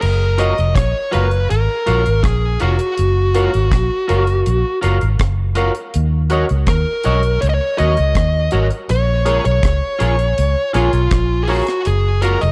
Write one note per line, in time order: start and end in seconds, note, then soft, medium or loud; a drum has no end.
0.01 0.51 F#1 loud
0.01 0.39 A#4 medium
0.01 crash medium
0.38 0.53 F4 medium
0.38 0.57 F#4 loud
0.38 0.53 A#4 medium
0.38 0.57 A#4 medium
0.38 0.53 C#5 medium
0.38 0.75 D#5 loud
0.38 0.57 F5 loud
0.38 closed hi-hat medium
0.58 0.74 F1 medium
0.58 closed hi-hat soft
0.75 0.92 A#1 medium
0.75 1.10 C#5 medium
0.75 kick medium
0.75 cross-stick loud
0.75 closed hi-hat medium
1.11 1.46 F#1 medium
1.11 1.27 F4 medium
1.11 1.30 F#4 medium
1.11 1.27 A#4 medium
1.11 1.31 A#4 medium
1.11 1.47 B4 medium
1.11 1.27 C#5 medium
1.11 1.31 F5 loud
1.11 closed hi-hat medium
1.31 closed hi-hat soft
1.50 1.67 G#1 medium
1.50 2.23 A#4 medium
1.50 closed hi-hat medium
1.86 2.04 A#1 medium
1.86 2.01 F4 medium
1.86 2.04 F#4 medium
1.86 2.01 A#4 medium
1.86 2.04 A#4 medium
1.86 2.02 C#5 medium
1.86 2.04 F5 loud
1.86 closed hi-hat medium
2.06 2.22 G#1 medium
2.06 2.13 A#4 soft
2.06 2.13 F5 soft
2.06 closed hi-hat soft
2.24 2.56 A#1 medium
2.24 2.62 G#4 medium
2.24 kick loud
2.24 cross-stick loud
2.24 closed hi-hat medium
2.60 2.78 F1 medium
2.60 2.75 F4 medium
2.60 4.79 F#4 medium
2.60 2.79 F#4 loud
2.60 2.75 A#4 medium
2.60 2.79 A#4 medium
2.60 2.75 C#5 medium
2.60 2.79 F5 loud
2.60 closed hi-hat medium
2.79 closed hi-hat medium
2.98 3.47 F#1 loud
2.98 closed hi-hat medium
3.34 3.49 F4 medium
3.34 3.52 F#4 medium
3.34 3.53 A#4 medium
3.34 3.50 A#4 medium
3.34 3.50 C#5 loud
3.34 3.53 F5 loud
3.34 closed hi-hat medium
3.54 3.70 G#1 loud
3.54 closed hi-hat soft
3.72 3.88 A#1 medium
3.72 kick loud
3.72 cross-stick loud
3.72 closed hi-hat medium
4.08 4.42 F#1 medium
4.08 4.23 F4 medium
4.08 4.26 F#4 medium
4.08 4.23 A#4 medium
4.08 4.27 A#4 medium
4.08 4.23 C#5 medium
4.08 4.27 F5 loud
4.08 closed hi-hat medium
4.27 closed hi-hat soft
4.46 4.63 A#1 medium
4.46 closed hi-hat medium
4.81 4.99 F#1 loud
4.81 4.97 F4 medium
4.81 5.00 F#4 loud
4.81 4.97 A#4 medium
4.81 5.00 A#4 medium
4.81 4.97 C#5 medium
4.81 5.01 F5 loud
4.81 closed hi-hat medium
5.01 5.18 G#1 medium
5.01 5.09 A#4 soft
5.01 5.09 F5 soft
5.01 closed hi-hat soft
5.19 5.69 F#1 medium
5.19 kick loud
5.19 cross-stick loud
5.19 closed hi-hat medium
5.55 5.70 F4 medium
5.55 5.74 F#4 loud
5.55 5.71 A#4 medium
5.55 5.75 A#4 medium
5.55 5.71 C#5 medium
5.55 5.75 F5 loud
5.55 closed hi-hat medium
5.75 closed hi-hat medium
5.94 6.44 D#2 loud
5.94 closed hi-hat medium
6.30 6.45 F#4 medium
6.30 6.48 F#4 medium
6.30 6.45 A#4 medium
6.30 6.46 C#5 medium
6.30 6.49 C#5 medium
6.30 6.49 D#5 loud
6.30 closed hi-hat medium
6.49 6.66 C#2 loud
6.49 closed hi-hat soft
6.67 6.84 D#2 medium
6.67 7.44 A#4 medium
6.67 kick loud
6.67 cross-stick loud
6.67 closed hi-hat medium
7.03 7.38 B1 medium
7.03 7.22 F#4 medium
7.03 7.19 F#4 medium
7.03 7.20 A#4 medium
7.03 7.22 C#5 medium
7.03 7.20 C#5 medium
7.03 7.23 D#5 loud
7.03 closed hi-hat medium
7.23 closed hi-hat soft
7.41 7.59 C#2 loud
7.41 7.44 C#5 loud
7.41 closed hi-hat medium
7.49 7.54 D#5 medium
7.54 7.76 C#5 loud
7.78 7.96 D#2 medium
7.78 7.96 F#4 medium
7.78 7.93 F#4 medium
7.78 7.94 A#4 medium
7.78 7.96 C#5 medium
7.78 7.94 C#5 medium
7.78 8.48 D#5 loud
7.78 7.97 D#5 loud
7.78 closed hi-hat medium
7.97 8.14 C#2 medium
7.97 8.05 C#5 soft
7.97 8.05 D#5 soft
7.97 closed hi-hat soft
8.15 8.48 D#2 medium
8.15 kick loud
8.15 cross-stick loud
8.15 closed hi-hat medium
8.51 8.69 G#1 medium
8.51 8.70 F#4 loud
8.51 8.67 F#4 medium
8.51 8.67 A#4 loud
8.51 8.67 C#5 medium
8.51 8.70 C#5 medium
8.51 8.71 D#5 loud
8.51 closed hi-hat medium
8.70 closed hi-hat medium
8.89 9.39 A#1 loud
8.89 9.44 C#5 medium
8.89 closed hi-hat medium
9.25 9.41 F4 medium
9.25 9.44 G#4 medium
9.25 9.41 G#4 loud
9.25 9.44 A#4 medium
9.25 9.41 C#5 loud
9.25 9.44 C#5 medium
9.25 closed hi-hat medium
9.45 9.62 B1 medium
9.45 10.71 C#5 medium
9.45 closed hi-hat soft
9.63 9.80 C#2 medium
9.63 kick loud
9.63 cross-stick loud
9.63 closed hi-hat medium
9.99 10.33 A#1 medium
9.99 10.14 F4 medium
9.99 10.15 G#4 medium
9.99 10.18 G#4 loud
9.99 10.18 A#4 medium
9.99 10.15 C#5 medium
9.99 10.19 C#5 loud
9.99 closed hi-hat medium
10.19 closed hi-hat soft
10.38 10.54 C#2 medium
10.38 closed hi-hat medium
10.73 10.91 A#1 medium
10.73 10.89 F4 medium
10.73 11.44 F4 medium
10.73 10.92 G#4 medium
10.73 10.89 G#4 medium
10.73 10.92 A#4 medium
10.73 10.89 C#5 medium
10.73 10.93 C#5 loud
10.73 closed hi-hat medium
10.93 11.09 B1 medium
10.93 11.01 A#4 soft
10.93 11.01 C#5 medium
10.93 closed hi-hat soft
11.11 11.61 A#1 medium
11.11 kick loud
11.11 cross-stick loud
11.11 closed hi-hat medium
11.43 11.49 G#4 medium
11.47 11.63 F4 medium
11.47 11.87 F#4 medium
11.47 11.63 G#4 medium
11.47 11.66 G#4 medium
11.47 11.66 A#4 medium
11.47 11.63 C#5 medium
11.47 11.67 C#5 loud
11.47 open hi-hat medium
11.67 cross-stick medium
11.67 closed hi-hat medium
11.85 12.35 F#1 loud
11.85 12.22 G#4 medium
11.85 closed hi-hat medium
12.22 12.37 F4 medium
12.22 12.40 F#4 loud
12.22 12.41 A#4 medium
12.22 12.37 A#4 medium
12.22 12.40 A#4 medium
12.22 12.37 C#5 medium
12.22 12.41 F5 loud
12.22 closed hi-hat medium
12.41 12.52 F1 medium
12.41 12.52 D#5 medium
12.41 closed hi-hat soft